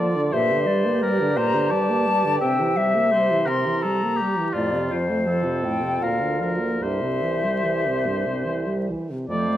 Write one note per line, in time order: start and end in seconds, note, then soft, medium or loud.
0.00 0.34 D3 soft
0.00 0.17 F3 soft
0.00 0.29 F4 soft
0.00 0.34 D5 medium
0.16 0.33 D3 soft
0.32 2.43 G2 soft
0.32 0.53 A#2 soft
0.32 4.95 G4 soft
0.32 1.02 C5 soft
0.32 0.68 E5 medium
0.52 0.69 D3 soft
0.67 0.86 G3 soft
0.67 1.39 D5 medium
0.85 1.04 A#3 soft
1.02 1.22 G3 soft
1.02 1.38 A#4 soft
1.20 1.38 D3 soft
1.37 1.56 A#2 soft
1.37 1.72 C5 soft
1.37 1.72 A#5 medium
1.55 1.73 D3 soft
1.70 1.91 G3 soft
1.70 2.40 D5 medium
1.70 2.39 A5 medium
1.90 2.08 A#3 soft
2.07 2.26 G3 soft
2.25 2.41 D3 soft
2.40 4.27 C3 soft
2.40 2.61 C3 soft
2.40 3.11 E5 soft
2.40 2.78 G5 medium
2.60 2.79 E3 soft
2.77 2.98 G3 soft
2.77 3.50 E5 medium
2.96 3.15 A#3 soft
3.11 3.33 G3 soft
3.11 3.48 C5 soft
3.31 3.50 E3 soft
3.46 3.68 C3 soft
3.46 3.84 A#4 soft
3.46 3.83 C6 medium
3.66 3.86 E3 soft
3.82 4.05 G3 soft
3.82 4.18 A4 soft
3.82 4.53 A#5 medium
4.03 4.22 A#3 soft
4.16 4.54 G4 soft
4.20 4.40 G3 soft
4.39 4.54 E3 soft
4.53 6.04 F2 soft
4.53 4.75 A2 soft
4.53 5.00 F4 soft
4.53 4.92 D5 medium
4.73 4.92 C3 soft
4.91 5.11 F3 soft
4.91 5.66 C5 soft
5.09 5.28 A3 soft
5.26 5.46 F3 soft
5.26 6.77 F4 soft
5.26 6.05 A4 soft
5.44 5.65 C3 soft
5.64 5.84 A2 soft
5.64 6.04 G5 soft
5.83 6.01 C3 soft
6.01 6.81 D2 soft
6.01 6.22 A#2 soft
6.01 6.40 A#4 soft
6.01 6.53 F5 soft
6.21 6.41 D3 soft
6.40 6.60 F3 soft
6.40 6.84 A#4 soft
6.58 6.80 A#3 soft
6.81 8.90 C2 soft
6.81 7.03 G2 soft
6.81 8.90 G4 soft
6.81 8.89 C5 soft
6.81 8.85 E5 soft
7.02 7.24 C3 soft
7.22 7.45 E3 soft
7.44 7.66 G3 soft
7.65 7.87 E3 soft
7.86 8.07 C3 soft
8.06 8.27 G2 soft
8.26 8.47 C3 soft
8.45 8.68 E3 soft
8.67 8.91 G3 soft
8.90 9.12 E3 soft
9.10 9.29 C3 soft
9.29 9.57 F2 soft
9.29 9.50 F3 soft
9.29 9.57 A3 soft
9.29 9.57 C5 soft
9.29 9.57 D5 medium
9.49 9.57 A3 soft